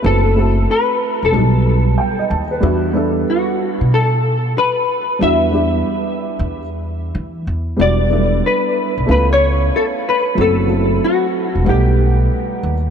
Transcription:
0.02 F#1 A3 C4 E4 F#4 A4
0.06 A4
0.35 A3 C4 E4 F#4 A4
0.71 B4
1.23 E1 A4
1.32 B1 F#3 G3 B3 D#4 A4
1.98 G5
2.19 D#5
2.30 D#2 A5
2.51 B4
2.60 E2 G3 B3 D4 E4 F#4
2.93 G3 B3 D4 E4 A4
3.30 F#4
3.79 B2 E4
3.94 A4
4.58 B4
5.19 E2 G3 B3 D4 E4 F#4 E5
5.51 G3 B3 D4 E4 G4
6.39 E2
7.15 E3
7.47 E2
7.76 E1 G3 B3 D4 E4 F#4
7.81 D5
8.09 F#3 B3 D4 E4 A4
8.15 G3
8.46 B4
8.98 B1
9.06 C#2 A3 B3 C#4 E4 F4
9.11 B4
9.33 C#5
9.76 A4
10.09 B4
10.35 F#1 F#3 A3 C4 E4 F#4
10.41 A4
10.67 F#3 A3 C4 E4 A4
11.04 F#4
11.55 E1
11.64 B1 G3 A3 B3 D#4 F#5
11.69 G4
12.63 D#2

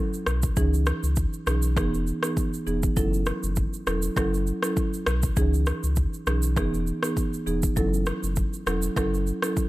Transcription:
0.14 shaker
0.26 B1, cross-stick, shaker
0.42 kick, shaker
0.57 C#2 E3 C#4 D#4 G#4, kick, shaker
0.74 shaker
0.86 cross-stick, shaker
1.03 C#2, shaker
1.16 kick, shaker
1.33 shaker
1.47 B1 E3 C#4 D#4 G#4, cross-stick, shaker
1.62 shaker
1.77 E1 E3 B3 D#4 G#4, kick, cross-stick, shaker
1.94 shaker
2.07 shaker
2.23 E3 B3 D#4 G#4, cross-stick, shaker
2.37 kick, shaker
2.54 shaker
2.66 E1 E3 B3 D#4 G#4, shaker
2.83 kick, shaker
2.96 F#1 F#3 C#4 E4 A4, kick, shaker
3.13 shaker
3.26 cross-stick, shaker
3.43 F#1, shaker
3.56 kick, shaker
3.73 shaker
3.87 E1 F#3 C#4 E4 A4, cross-stick, shaker
4.02 shaker
4.17 F#1 F#3 C#4 E4 A4, kick, cross-stick, shaker
4.34 shaker
4.47 shaker
4.63 F#3 C#4 E4 A4, cross-stick, shaker
4.77 kick, shaker
4.94 shaker
5.06 B1, cross-stick, shaker
5.22 kick, shaker
5.37 C#2 E3 C#4 D#4 G#4, kick, shaker
5.54 shaker
5.66 cross-stick, shaker
5.83 C#2, shaker
5.96 kick, shaker
6.14 shaker
6.27 B1 E3 C#4 D#4 G#4, cross-stick, shaker
6.42 shaker
6.57 E1 E3 B3 D#4 G#4, kick, cross-stick, shaker
6.74 shaker
6.87 shaker
7.03 E3 B3 D#4 G#4, cross-stick, shaker
7.17 kick, shaker
7.33 shaker
7.46 E1 E3 B3 D#4 G#4, shaker
7.62 kick, shaker
7.76 F#1 F#3 C#4 E4 A4, kick, shaker
7.94 shaker
8.06 cross-stick, shaker
8.23 F#1, shaker
8.36 kick, shaker
8.53 shaker
8.66 E1 F#3 C#4 E4 A4, cross-stick, shaker
8.82 shaker
8.96 F#1 F#3 C#4 E4 A4, kick, cross-stick, shaker
9.14 shaker
9.27 shaker
9.42 F#3 C#4 E4 A4, cross-stick, shaker
9.57 kick, shaker

